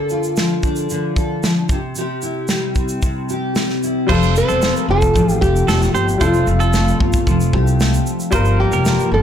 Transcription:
Already playing: D3 A4
0.09 F4, shaker
0.23 shaker
0.37 F3, snare, shaker
0.63 D4, kick, shaker
0.76 shaker
0.90 D3, shaker
1.16 A4, kick, shaker
1.43 F3, snare, shaker
1.69 C3, kick, shaker
1.95 C3 G4, shaker
2.22 E4, shaker
2.48 G3, snare, shaker
2.75 C4, kick, shaker
2.89 shaker
3.02 C3, kick, shaker
3.29 G4, shaker
3.56 G3, snare, shaker
3.70 snare
3.83 E4, shaker
4.07 F1 F3 G3 F4 C5, kick, crash
4.11 A4
4.23 shaker
4.36 C4 C5, shaker
4.48 E1 A4, shaker
4.62 A3, snare, shaker
4.76 A#4, shaker
4.88 F1 F4 A4
5.02 kick, shaker
5.14 A1 F3, kick, shaker
5.29 shaker
5.41 F1 G4, kick, shaker
5.56 shaker
5.68 E1 A3 A4, snare, shaker
5.82 snare, shaker
5.94 G1 G4 C5, shaker
6.08 shaker
6.18 F1 F3 G3 F4 C5, kick, shaker
6.22 A4
6.34 shaker
6.47 F1 C4, shaker
6.60 A4, shaker
6.73 A3, snare, shaker
6.88 shaker
7.00 G1 F4, kick
7.13 kick, shaker
7.27 F1 F3, kick, shaker
7.40 shaker
7.53 C2 G4, kick
7.67 shaker
7.80 A3, snare, shaker
7.94 shaker
8.07 shaker
8.20 shaker
8.31 G1 G2 G3 F4 C5, kick, shaker
8.35 A#4
8.45 shaker
8.60 A#3 G4
8.72 F1 A#4, shaker
8.85 F3, snare, shaker
9.00 shaker
9.12 G1 D4 A4

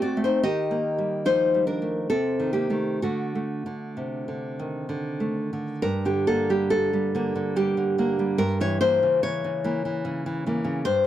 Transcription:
Already playing: A3 C4
0.02 F#4 D5
0.17 A3
0.24 D#4 C5
0.43 D#3 G4 D#5
0.71 A#3
0.98 G3
1.25 F3 D#4 C5
1.54 G3
1.67 D4 A#4
1.82 A3
2.10 C3 C4 A4
2.40 D#3
2.53 A#3 G4
2.70 D#3 A3
3.02 D3 A3 F#4
3.35 A3
3.66 D3
3.97 C3
4.28 D3
4.59 D#3
4.89 D3
5.20 A3
5.53 D3
5.82 G2 A#4
6.05 D3 G4
6.27 D3 A#3 A4
6.50 G3 G4
6.70 D3 A4
6.93 G3
7.15 D3 A#3
7.35 D3
7.56 G3 G4
7.77 D3
7.98 D3 A#3
8.19 G3
8.38 G2 A#4
8.61 E3 C#5
8.81 E3 A#3 C5
9.03 C#3
9.23 E3 C#5
9.44 C#3
9.64 E3 A#3
9.85 E3
10.05 C#3
10.26 E3
10.46 E3 A#3
10.64 C#3
10.85 G2 C5

